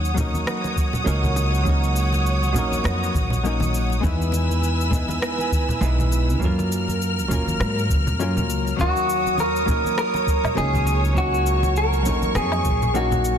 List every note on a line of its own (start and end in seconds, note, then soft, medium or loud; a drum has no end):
0.00 0.42 D#2 medium
0.00 0.13 F#3 medium
0.00 0.14 A#3 medium
0.00 0.14 C#4 medium
0.00 0.15 D#4 medium
0.00 0.16 A#4 medium
0.00 4.00 C#5 medium
0.00 4.00 F#5 medium
0.00 4.00 D#6 medium
0.05 cabasa soft
0.14 1.02 F#3 medium
0.14 1.03 A#3 medium
0.14 1.03 C#4 medium
0.14 kick medium
0.14 low conga medium
0.14 cabasa medium
0.19 1.04 D#4 medium
0.19 1.05 A#4 medium
0.19 muted conga soft
0.34 high conga medium
0.34 cabasa soft
0.47 cross-stick medium
0.47 cabasa soft
0.64 muted conga medium
0.64 cabasa soft
0.76 kick medium
0.76 high conga medium
0.76 cabasa medium
0.93 muted conga soft
0.93 low conga medium
0.93 cabasa soft
1.04 2.55 C#2 medium
1.04 1.62 F#3 medium
1.04 1.62 A#3 medium
1.04 1.63 C#4 medium
1.04 1.63 D#4 medium
1.04 1.63 A#4 loud
1.04 cabasa soft
1.24 high conga medium
1.24 low conga medium
1.24 cabasa soft
1.36 muted conga medium
1.36 cabasa medium
1.54 cabasa soft
1.63 2.51 F#3 medium
1.63 2.52 A#3 medium
1.63 2.52 C#4 medium
1.63 kick loud
1.63 muted conga medium
1.63 high conga medium
1.63 cabasa soft
1.67 2.53 D#4 medium
1.67 2.54 A#4 medium
1.84 cabasa soft
1.96 cabasa medium
2.12 muted conga medium
2.12 high conga medium
2.12 cabasa soft
2.26 cabasa soft
2.43 muted conga soft
2.43 cabasa soft
2.53 2.79 A#1 medium
2.53 3.40 F#3 medium
2.53 3.41 A#3 medium
2.53 3.41 C#4 medium
2.53 low conga loud
2.53 cabasa medium
2.57 3.42 D#4 medium
2.57 3.43 A#4 medium
2.72 high conga medium
2.72 cabasa soft
2.84 3.08 F2 medium
2.84 cross-stick medium
2.84 muted conga medium
2.84 cabasa soft
3.04 cabasa soft
3.14 3.99 A#1 medium
3.14 kick loud
3.14 muted conga soft
3.14 high conga medium
3.14 cabasa medium
3.30 low conga medium
3.30 cabasa soft
3.43 4.00 F#3 medium
3.43 4.01 A#3 medium
3.43 4.01 C#4 medium
3.43 4.01 D#4 medium
3.43 4.02 A#4 medium
3.43 cabasa soft
3.60 muted conga medium
3.60 high conga medium
3.60 low conga medium
3.60 cabasa soft
3.74 cabasa medium
3.90 muted conga soft
3.90 cabasa soft
4.01 5.18 E2 medium
4.01 4.88 G#3 medium
4.01 4.89 B3 medium
4.01 4.90 D#4 medium
4.01 6.39 B4 medium
4.01 6.39 G#5 medium
4.01 6.39 E6 medium
4.01 kick loud
4.01 high conga medium
4.01 cabasa soft
4.05 4.90 E4 medium
4.05 4.91 B4 medium
4.22 cabasa soft
4.32 muted conga medium
4.32 cabasa medium
4.49 high conga medium
4.49 cabasa soft
4.62 muted conga medium
4.62 cabasa soft
4.81 cabasa soft
4.91 5.78 G#3 medium
4.91 5.78 B3 medium
4.91 5.79 D#4 medium
4.91 kick loud
4.91 low conga medium
4.91 cabasa medium
4.95 5.80 E4 medium
4.95 5.81 B4 medium
5.08 muted conga medium
5.08 high conga loud
5.08 cabasa soft
5.22 cross-stick medium
5.22 cabasa soft
5.39 muted conga soft
5.39 cabasa soft
5.52 kick loud
5.52 high conga medium
5.52 cabasa medium
5.69 low conga medium
5.69 cabasa soft
5.81 6.41 B1 medium
5.81 6.38 G#3 medium
5.81 6.38 B3 medium
5.81 6.38 D#4 medium
5.81 6.39 E4 medium
5.81 6.39 B4 medium
5.81 muted conga medium
5.81 cabasa soft
5.99 high conga medium
5.99 low conga medium
5.99 cabasa soft
6.11 muted conga soft
6.11 cabasa medium
6.30 cabasa soft
6.40 7.30 F#2 medium
6.40 7.26 F#3 medium
6.40 7.27 A#3 medium
6.40 7.28 C#4 medium
6.40 7.28 F4 medium
6.40 8.76 A#4 medium
6.40 8.76 F6 medium
6.40 kick loud
6.40 high conga medium
6.40 cabasa soft
6.45 7.29 A#4 medium
6.59 muted conga medium
6.59 cabasa soft
6.72 cabasa medium
6.88 muted conga soft
6.88 high conga medium
6.88 cabasa soft
7.02 cabasa soft
7.19 cabasa soft
7.28 7.54 F#1 medium
7.28 8.15 F#3 medium
7.28 8.16 A#3 medium
7.28 8.17 C#4 medium
7.28 kick medium
7.28 muted conga medium
7.28 low conga medium
7.28 cabasa medium
7.32 8.17 F4 medium
7.32 8.18 A#4 medium
7.48 high conga medium
7.48 cabasa soft
7.60 7.84 G#2 medium
7.60 cross-stick medium
7.60 muted conga soft
7.60 cabasa soft
7.79 cabasa soft
7.90 8.19 C#2 medium
7.90 kick loud
7.90 high conga medium
7.90 cabasa medium
8.07 muted conga medium
8.07 low conga medium
8.07 cabasa soft
8.19 8.49 F#2 medium
8.19 8.75 F#3 medium
8.19 8.76 A#3 medium
8.19 8.76 C#4 medium
8.19 8.77 F4 medium
8.19 8.77 A#4 loud
8.19 cabasa soft
8.37 muted conga soft
8.37 high conga medium
8.37 low conga medium
8.37 cabasa soft
8.49 8.73 C#2 medium
8.49 cabasa medium
8.67 cabasa soft
8.76 9.93 D#2 medium
8.76 9.64 F#3 medium
8.76 9.65 A#3 medium
8.76 9.65 C#4 medium
8.76 13.38 C#5 medium
8.76 11.13 D#6 medium
8.76 kick loud
8.76 high conga medium
8.76 cabasa soft
8.81 9.66 D#4 medium
8.81 9.35 F#4 medium
8.81 9.67 A#4 medium
8.96 muted conga soft
8.96 cabasa soft
9.10 cabasa medium
9.26 high conga medium
9.26 cabasa soft
9.38 9.97 A#4 medium
9.38 muted conga medium
9.38 cabasa soft
9.56 cabasa soft
9.66 10.53 F#3 medium
9.66 10.53 A#3 medium
9.66 10.54 C#4 medium
9.66 kick medium
9.66 muted conga soft
9.66 low conga medium
9.66 cabasa medium
9.70 10.55 D#4 medium
9.70 10.56 A#4 medium
9.84 high conga medium
9.84 cabasa soft
9.98 10.57 A#4 loud
9.98 cross-stick medium
9.98 cabasa soft
10.14 muted conga medium
10.14 cabasa soft
10.27 kick medium
10.27 high conga medium
10.27 cabasa medium
10.44 muted conga soft
10.44 low conga medium
10.44 cabasa soft
10.44 low woodblock medium
10.55 12.05 C#2 medium
10.55 11.12 F#3 medium
10.55 11.13 A#3 medium
10.55 11.13 C#4 medium
10.55 11.13 D#4 medium
10.55 11.01 G#4 medium
10.55 11.14 A#4 medium
10.55 cabasa soft
10.73 high conga medium
10.73 low conga medium
10.73 cabasa soft
10.87 muted conga medium
10.87 cabasa medium
11.05 cabasa soft
11.13 12.01 F#3 medium
11.13 12.02 A#3 medium
11.13 12.02 C#4 medium
11.13 12.03 D#4 medium
11.13 13.38 C#6 medium
11.13 kick loud
11.13 muted conga soft
11.13 cabasa soft
11.18 11.73 F#4 medium
11.18 12.04 A#4 medium
11.18 high conga medium
11.34 cabasa soft
11.46 cabasa medium
11.63 muted conga medium
11.63 high conga medium
11.63 cabasa soft
11.76 12.36 A#4 medium
11.76 cabasa soft
11.93 muted conga soft
11.93 cabasa soft
12.03 12.29 A#1 medium
12.03 12.90 F#3 medium
12.03 12.91 A#3 medium
12.03 12.92 C#4 medium
12.03 low conga medium
12.03 cabasa medium
12.07 12.92 D#4 medium
12.07 12.93 A#4 medium
12.22 high conga medium
12.22 cabasa soft
12.35 12.59 F2 medium
12.35 12.97 G#4 medium
12.35 cross-stick medium
12.35 muted conga medium
12.35 cabasa soft
12.52 cabasa soft
12.52 low woodblock medium
12.65 13.38 A#1 medium
12.65 kick medium
12.65 muted conga soft
12.65 high conga medium
12.65 cabasa medium
12.82 low conga medium
12.82 cabasa soft
12.94 13.38 F#3 medium
12.94 13.38 A#3 medium
12.94 13.38 C#4 medium
12.94 13.38 D#4 medium
12.94 13.38 F#4 medium
12.94 13.38 A#4 loud
12.94 cabasa soft
13.12 muted conga medium
13.12 high conga medium
13.12 low conga medium
13.12 cabasa soft
13.25 cabasa medium